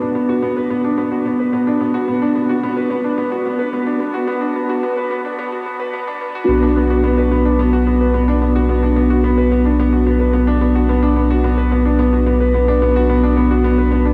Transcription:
Already playing: B3 D4 F#4 B4
0.02 D4
0.15 B3
0.29 F#4
0.42 B3
0.57 B4
0.70 B3
0.84 D4
0.98 B3
1.12 F#4
1.26 B3
1.40 B4
1.53 B3
1.67 D4
1.81 B3
1.94 F#4
2.08 B3
2.22 D4
2.36 B3
2.49 F#4
2.63 B3
2.77 B4
2.90 B3
3.04 D4
3.18 B3
3.32 F#4
3.46 B3
3.59 B4
3.73 B3
3.87 D4
4.00 B3
4.14 F#4
4.27 B3
4.41 D4
4.56 B3
4.69 F#4
4.83 B3
4.97 B4
5.11 B3
5.25 D4
5.39 B3
5.52 F#4
5.66 B3
5.80 B4
5.93 B3
6.07 D4
6.21 B3
6.35 F#4
6.49 B1 B3
6.63 D4
6.76 B3
6.90 F#4
7.04 B3
7.18 B4
7.32 B3
7.45 D4
7.59 B3
7.73 F#4
7.87 B3
8.01 B4
8.14 B3
8.28 D4
8.42 B3
8.56 F#4
8.69 B3
8.83 D4
8.96 B3
9.10 F#4
9.24 B3
9.38 B4
9.52 B3
9.65 D4
9.80 B3
9.93 F#4
10.07 B3
10.20 B4
10.33 B3
10.47 D4
10.61 B3
10.75 F#4
10.89 B3
11.03 D4
11.16 B3
11.31 F#4
11.44 B3
11.57 B4
11.72 B3
11.85 D4
11.99 B3
12.13 F#4
12.27 B3
12.40 B4
12.54 B3
12.68 D4
12.82 B3
12.96 F#4
13.10 B3
13.23 D4
13.37 B3
13.51 F#4
13.64 B3
13.78 B4
13.92 B3
14.05 D4

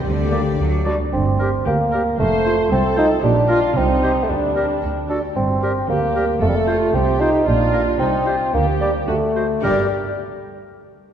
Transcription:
0.03 D2 D3 D4 G4 D5
0.29 G3 A#3 G4 D5
0.57 D2 F#3
0.85 F#3 G3 A3 D4 F#4 D5
1.13 G1 G2 C4
1.39 G4 A#4 D5
1.65 D2 A#3 G4
1.91 G4 A#4 D5
2.18 F1 F2 A3 C5
2.44 F4 A4 C5 F5
2.70 C2 C4 A4
2.96 D#4 F4 A4 C5 F5
3.23 A#1 A#2 D4 G4
3.48 F4 A#4 D5 F5
3.76 C2 C3 C4 D#4
4.03 G4 C5 D#5
4.23 A3
4.29 D2 D3 G3 D4
4.56 G4 A#4 D5
4.82 D2 D3 A4
5.09 D4 F#4 G4 A4 D5
5.36 G1 G2 C4
5.62 G4 A#4 D5
5.88 D2 A#3 G4
6.15 G4 A#4 D5
6.41 F1 F2 A3 A4
6.49 G3
6.56 A3
6.67 F4 A4 C5 F5
6.93 C2 C4 G4
7.20 D#4 F4 A4 C5 F5
7.46 A#1 A#2 D4 F4
7.73 F4 A#4 D5 F5
7.99 C2 C3 C4 D#4
8.26 F4 G4 C5 D#5
8.53 D2 D3 A#3 G4
8.80 G3 G4 A#4 D5
9.07 D2 D3 A3 F#4
9.36 F#4 C5 D#5
9.63 G1 G2 G3 G4 A#4 D5

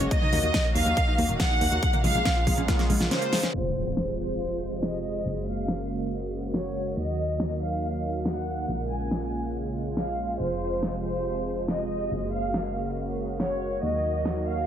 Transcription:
Already playing: A#3 F#4
0.00 F#1 C#4, closed hi-hat
0.11 D#3 F#3 A#3 D#5, kick, closed hi-hat
0.22 D#4, mid tom
0.33 D#2 A#3, open hi-hat, mid tom
0.43 D#2 A#3, closed hi-hat
0.54 F#4, kick, snare, closed hi-hat
0.65 A#4
0.76 D#2 A#3 F5, open hi-hat
0.86 D#2 F#4, closed hi-hat
0.97 A#4, kick, closed hi-hat
1.08 D#4
1.18 D#2 A#3, open hi-hat
1.29 D#1, closed hi-hat
1.40 F#4 F#5, kick, snare, closed hi-hat
1.50 D#4
1.61 D#2 A#3, open hi-hat
1.72 D#2 F#4, closed hi-hat
1.82 C#3 G#3 F4, kick, closed hi-hat
1.93 A#3, closed hi-hat, mid tom
2.04 A#1 G#3 F5, open hi-hat, mid tom
2.15 A#1 G#3, closed hi-hat
2.25 C#4, kick, snare, closed hi-hat
2.36 F4
2.47 A#1 G#3, kick, open hi-hat
2.58 A#1 C#4, closed hi-hat
2.68 F4, kick, snare, closed hi-hat
2.79 A#3, snare, closed hi-hat
2.90 A#1 G#3, open hi-hat
3.01 A#1, snare, closed hi-hat
3.11 C#4 C5, snare, closed hi-hat
3.22 A#3, closed hi-hat
3.33 G#3, snare, open hi-hat
3.43 C#4, snare, closed hi-hat
3.54 F1 C3 F3 G#3 F4 C5, crash, impact
3.97 snare
4.18 C5
4.83 D#5, snare
5.25 F#1 C#3 A#3 F#4
5.47 F5
5.68 snare
6.54 C#5, snare
6.97 D#2 D#3 F#3 A#3 D#5
7.40 snare
7.61 F5
8.26 F#5, snare
8.68 A#1 C#3 G#3 F4
8.90 G#5
9.11 snare
9.97 F5, snare
10.40 F1 C3 F3 C5
10.83 snare
11.04 C5
11.68 D#5, snare
12.11 F#1 C#3 A#3 F#4
12.33 F5
12.54 snare
13.40 C#5, snare
13.83 D#2 D#3 F#3 A#3 D#5
14.25 snare
14.47 F5

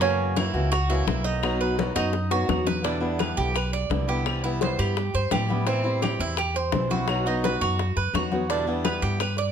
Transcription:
Already playing: F#2
0.00 C#3 E3 A#3 C#4 F#4, high bongo, high conga
0.19 high conga
0.36 E3 A#3 C#4 E4 F#4, high bongo, high conga, claves
0.54 C#2 E3 A#3 C#4 F#4, high bongo, high conga
0.72 F#4, muted steel-string acoustic guitar stroke, high bongo, high conga, claves
0.89 E3 A#3 C#4 E4 F#4, high bongo, high conga
1.06 B1 E3 A#3 C#4 F#4, high bongo, low bongo, high conga
1.24 D#4, high bongo
1.42 B2 F#3 B3 D#4 F#4, high bongo, high conga, claves
1.61 B4, high bongo, high conga
1.78 F#3 B3 D#4 F#4, high bongo, high conga
1.95 F#2 F#3 B3 D#4 F#4, high bongo, claves
2.13 muted steel-string acoustic guitar stroke, high bongo, high conga
2.31 F#3 B3 D#4 F#4, high bongo, high conga
2.48 E2 F#3 B3 D#4 F#4, low bongo, high conga, claves
2.67 B4, low bongo, high conga
2.83 B2 D3 G3 B3 D4 E4, high bongo, high conga
3.00 D3 G3 B3 E4, high conga
3.19 B4, high bongo, high conga, claves
3.37 B1 G4, high bongo, high conga
3.54 B4, muted steel-string acoustic guitar stroke, high bongo, high conga, claves
3.73 D5, high bongo, high conga
3.90 C2 D3 G3 B3 E4, high bongo, low bongo, high conga
4.08 D3 G3 B3 E4 G4, high bongo
4.26 C3 E3 G3 B3 E4, high bongo, high conga, claves
4.44 E3 G3 B3 E4, high bongo, high conga
4.61 C5, high bongo, high conga
4.79 G2 G4, high conga, claves
4.97 muted steel-string acoustic guitar stroke, high bongo, high conga
5.14 G2 C5, high bongo, high conga
5.31 A2 E3 G3 B3 E4 G4, high bongo, low bongo, high conga, claves
5.49 E3 G3 B3 E4, high bongo, high conga
5.67 E3 G3 C4 E4, high bongo
5.84 G3 C4 E4, high conga
6.02 G4, high bongo, high conga, claves
6.19 E2 E4, high bongo, high conga
6.37 G4, muted steel-string acoustic guitar stroke, high bongo, high conga, claves
6.54 C5, high bongo, high conga
6.72 B1 E3 G3 C4 E4, high bongo, low bongo, high conga
6.90 G3 C4 E4 F#4, high bongo, high conga
7.08 B2 F#3 B3 D#4 F#4, high bongo, high conga, claves
7.26 F#3 B3 D#4 F#4, high bongo, high conga
7.44 B4, high bongo, high conga
7.61 F#2 F#4, high conga, claves
7.79 muted steel-string acoustic guitar stroke, high bongo, high conga
7.96 F#2 B4, high bongo, high conga
8.13 E2 F#3 B3 D#4 F#4, high bongo, low bongo, high conga, claves
8.31 F#3 B3 D#4 F#4, high bongo, high conga
8.49 B2 D3 G3 B3 D4 E4, high bongo, high conga
8.67 D3 G3 B3 E4, high conga
8.85 B4, high bongo, high conga, claves
9.02 G2 G4, high bongo, high conga
9.19 B4, muted steel-string acoustic guitar stroke, high bongo, high conga, claves
9.37 D5, high bongo, high conga

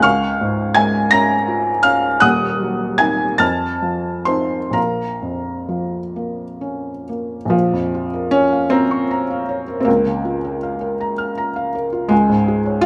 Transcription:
0.00 C#2 C#6 F6
0.04 F5
0.41 G#2
0.74 G#3 G#5 G#6
1.11 C#4 A#5 A#6
1.48 F4
1.83 C#4 F5 F6
2.20 D#1 D#2 F#5 D#6 F#6
2.60 F#3
2.98 C4 D#4 G#5 G#6
3.38 F2 A5 F6 A6
3.82 F3
4.25 C4 D#4 C5 C6
4.71 A#1 A#4 F5 A#5
5.22 F2
5.69 F3
6.16 A#3
6.61 C#4
7.09 A#3
7.45 A#1
7.50 F3
7.73 F2
7.94 F4
8.13 A#4
8.31 C#4 C#5
8.52 F5
8.70 C4 A#5
8.91 C#6
9.11 A#5
9.30 F5
9.49 C#5
9.68 A#4
9.80 C4
9.85 C#2 A#3
10.06 C#3
10.25 F4
10.44 A#4
10.63 F5
10.81 A#4
11.01 A#5
11.18 F6
11.38 A#5
11.56 F5
11.75 A#4
11.93 F4
12.09 C#2 G#3
12.29 G#2
12.48 G#4
12.66 C#5
12.81 F4

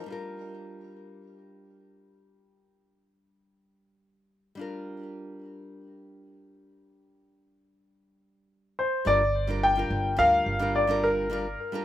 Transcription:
0.06 G3 D4
0.10 F4 A#4
4.55 G3 D4
4.59 F4 A#4
8.79 C5
9.05 G1 G3 D4 F4 A#4 D5
9.47 G3 D4 F4 A#4
9.63 G5
9.76 G3 D4 F4 A#4
9.90 G1
10.17 D2 G3 D4 F4 A#4 F5
10.46 G1
10.59 G3 D4 F4 A#4
10.76 D5
10.87 G3 D4 F4 A#4
11.04 A#4
11.30 G3 D4 F4 A#4
11.72 G3 D4 F4 A#4

